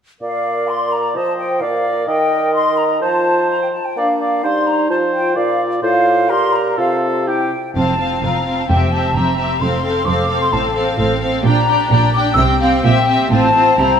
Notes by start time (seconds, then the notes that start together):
0.21 A#2 A#4 D5 F5
0.68 C6
0.92 A#5
1.15 F3 C5 D#5 A5
1.38 G5
1.61 A#2 A#4 D5 F5
2.07 D#3 D#5 G5
2.54 C6
2.78 A#5
3.01 F3 F4 C5 A5
3.49 A#5
3.62 G5
3.72 A5
3.85 G5
3.96 A#3 D4 D5 F5
4.20 D5
4.43 G3 D#4 C5 C6
4.67 A#5
4.90 F3 F4 C5 A5
5.13 G5
5.36 A#2 F4 D5 F5
5.82 A2 F4 C5 F5
6.29 A#2 G4 A#4 C6
6.54 A#5
6.78 C3 F4 A4 F5
7.03 F5
7.27 E4 G4 G5
7.76 F1 F2 C4 F4 F5 A5
7.99 C4 F4 F5
8.23 F1 F2 C4 F4 F5 A#5
8.46 C4 F4 F5
8.59 A5
8.68 F1 F2 C4 G4 E5 G5
8.91 C4 G4 E5 A5
9.15 F1 F2 C4 G4 E5 A#5
9.38 C4 G4 E5
9.61 F1 F2 C4 A4 F5 C6
9.83 C4 A4 F5
10.06 F1 F2 C4 A4 F5 D6
10.29 C4 A4 F5
10.41 C6
10.52 A1 A2 C4 A4 F5 A5
10.75 C4 A4 F5
10.98 A1 A2 C4 A4 F5
11.21 C4 A4 F5
11.44 A#1 A#2 D4 G4 G5 A#5
11.67 D4 G4 G5
11.91 A#1 A#2 D4 G4 G5
12.14 D4 G4 G5 D6
12.37 C2 C3 C4 G4 G5 E6
12.60 C4 G4 F5 G5
12.83 A#1 A#2 C4 G4 E5 G5
13.08 C4 G4 E5
13.30 A1 A2 C4 F4 C5 A5
13.54 C4 F4 C5
13.78 C2 C3 C4 E4 C5 A#5